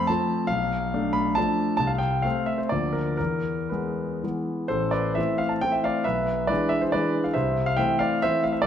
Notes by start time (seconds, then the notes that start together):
Already playing: F2 A3 C4 F5 B5
0.07 F3 A3 C4 A5
0.47 B1 F5
0.94 A3 D4
1.13 B5
1.35 F3 A3 D4 A5
1.77 C2 A5
1.87 F5
1.98 G5
2.22 A3 C4 F5
2.46 E5
2.58 C5
2.69 D2 F3 A#3 D5
2.93 A#4
3.17 E2 A#4
3.69 G#3 B3 B4
4.23 E3 G#3 B3
4.68 A1 A4 C5
4.91 B4 D5
5.15 E3 A3 C4 C5 E5
5.38 F5
5.49 A5
5.61 E3 A3 C4 G5
5.72 E5
5.84 D5 F5
6.04 B1 B4 E5
6.47 E3 G#3 D4 B4 D5
6.69 E5
6.81 C5
6.92 E3 G#3 D4 B4 D5
7.24 F5
7.34 C2 C5 E5
7.66 F5
7.77 E3 A3 C4 E5 G5
7.99 D5 F5
8.22 E3 A3 C4 C5 E5
8.43 F5
8.52 E5
8.62 A4 D5